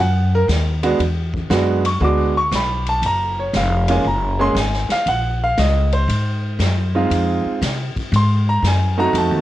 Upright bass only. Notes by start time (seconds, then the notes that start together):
Already playing: F#2
0.48 D#2
0.99 E2
1.50 F#2
2.01 D2
2.51 B1
3.02 F#1
3.53 F1
4.05 F#1
4.55 G#1
4.89 muted upright bass stroke
5.06 A#1
5.58 C#2
6.08 G#2
6.59 F#2
7.10 F2
7.45 muted upright bass stroke
7.62 C3
7.96 muted upright bass stroke
8.12 G#2
8.63 F#2
9.13 F2
9.31 D#2